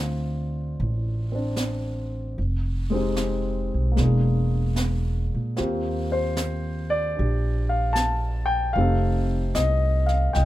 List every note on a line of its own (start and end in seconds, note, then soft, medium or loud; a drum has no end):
0.00 0.74 D2 medium
0.00 2.34 A3 soft
0.00 1.30 C4 soft
0.00 1.34 D4 soft
0.00 2.40 F4 medium
0.77 2.34 A1 medium
0.77 brush sweep soft
1.32 2.37 C4 soft
1.32 2.39 D4 soft
1.56 snare soft
1.56 hi-hat pedal soft
2.36 3.68 F1 medium
2.36 brush sweep soft
2.90 3.94 G#3 soft
2.90 3.97 C4 soft
2.90 3.98 D#4 soft
2.94 3.98 G4 soft
3.16 snare soft
3.16 hi-hat pedal soft
3.74 3.97 B1 medium
3.92 5.54 A#3 soft
3.96 5.29 E1 medium
3.96 5.56 G#3 soft
3.96 5.58 D4 soft
3.96 brush sweep soft
3.96 snare soft
4.03 5.60 G#4 soft
4.76 snare soft
4.76 hi-hat pedal soft
5.34 5.57 A#2 medium
5.57 7.14 D#2 medium
5.57 8.75 A#3 soft
5.57 8.75 C4 soft
5.57 8.75 F4 soft
5.57 7.17 G4 soft
5.57 brush sweep soft
5.57 snare soft
6.12 6.88 C5 medium
6.37 snare soft
6.37 hi-hat pedal soft
6.90 7.73 D5 medium
7.16 8.73 A#1 medium
7.16 8.75 D4 soft
7.16 8.76 G4 soft
7.16 brush sweep soft
7.69 7.93 F5 medium
7.93 8.45 A5 medium
7.93 snare soft
7.93 hi-hat pedal soft
8.46 8.71 G5 medium
8.73 9.51 F1 medium
8.73 10.45 A3 soft
8.73 10.45 C4 soft
8.73 9.49 F5 medium
8.73 brush sweep soft
8.77 10.45 D#4 soft
8.77 10.45 G4 soft
8.77 10.32 A4 medium
9.55 10.30 C2 medium
9.55 10.11 D#5 medium
9.55 snare soft
9.55 hi-hat pedal soft
10.06 10.33 F5 medium
10.06 snare soft
10.33 10.45 C2 medium
10.33 10.45 D#5 soft
10.33 10.45 G5 medium
10.33 brush sweep soft
10.33 snare soft